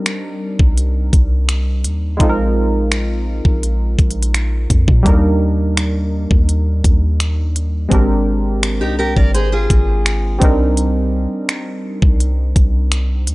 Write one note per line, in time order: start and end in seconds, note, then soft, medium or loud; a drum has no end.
0.00 1.79 G3 medium
0.00 1.80 C4 medium
0.00 1.80 D4 medium
0.00 1.81 D#4 medium
0.00 1.82 A#4 medium
0.06 finger snap loud
0.06 closed hi-hat medium
0.59 1.11 C2 loud
0.59 kick medium
0.78 closed hi-hat medium
1.13 1.86 C2 loud
1.13 kick medium
1.13 closed hi-hat medium
1.49 finger snap loud
1.49 closed hi-hat medium
1.84 2.19 D#2 loud
1.84 closed hi-hat medium
2.17 3.41 A#1 loud
2.17 5.00 G#3 medium
2.17 5.01 C4 medium
2.17 5.02 D#4 medium
2.17 kick loud
2.17 closed hi-hat medium
2.21 5.03 F4 medium
2.21 2.28 A4 medium
2.29 5.06 A#4 medium
2.92 finger snap loud
2.92 closed hi-hat medium
3.45 3.97 A#1 loud
3.45 kick medium
3.63 closed hi-hat medium
3.99 4.67 A#1 loud
3.99 kick medium
3.99 closed hi-hat soft
4.11 closed hi-hat medium
4.23 closed hi-hat medium
4.34 finger snap loud
4.34 closed hi-hat medium
4.70 4.87 F2 loud
4.70 kick medium
4.70 closed hi-hat medium
4.88 5.05 A#2 loud
4.88 kick medium
5.03 6.27 D#2 loud
5.03 7.86 G3 medium
5.03 7.87 A#3 medium
5.03 7.88 D4 medium
5.03 kick loud
5.03 closed hi-hat medium
5.07 7.88 D#4 medium
5.07 7.89 A#4 medium
5.77 finger snap loud
5.77 closed hi-hat medium
6.31 6.82 D#2 loud
6.31 kick medium
6.49 closed hi-hat medium
6.84 7.88 D#2 loud
6.84 kick medium
6.84 closed hi-hat medium
7.20 finger snap loud
7.20 closed hi-hat medium
7.56 closed hi-hat medium
7.89 8.83 G#1 loud
7.89 10.36 G#3 medium
7.89 10.37 C4 medium
7.89 10.38 D4 medium
7.89 kick loud
7.89 closed hi-hat medium
7.93 10.38 G4 medium
7.93 10.39 A#4 medium
8.63 finger snap loud
8.63 closed hi-hat medium
8.81 9.15 C2 medium
8.81 8.98 D#4 medium
8.81 8.98 G4 medium
8.99 9.16 G4 medium
8.99 9.16 A#4 medium
9.16 9.68 G#1 loud
9.16 9.34 A#4 medium
9.16 9.33 D5 medium
9.16 kick medium
9.34 9.51 G#4 medium
9.34 9.51 C5 medium
9.34 closed hi-hat medium
9.52 10.38 F4 medium
9.52 10.38 G#4 medium
9.70 10.39 G#1 loud
9.70 kick medium
9.70 closed hi-hat medium
10.06 finger snap loud
10.06 closed hi-hat medium
10.39 11.27 C2 loud
10.39 13.22 G3 medium
10.39 13.22 C4 medium
10.39 13.23 D4 medium
10.39 kick loud
10.39 closed hi-hat medium
10.43 13.24 D#4 medium
10.43 13.25 A#4 medium
10.77 closed hi-hat medium
11.49 finger snap loud
11.49 closed hi-hat medium
12.02 12.54 C2 loud
12.02 kick medium
12.20 closed hi-hat medium
12.56 13.29 C2 loud
12.56 kick medium
12.56 closed hi-hat medium
12.92 finger snap loud
12.92 closed hi-hat medium
13.27 13.35 D#2 loud
13.27 closed hi-hat medium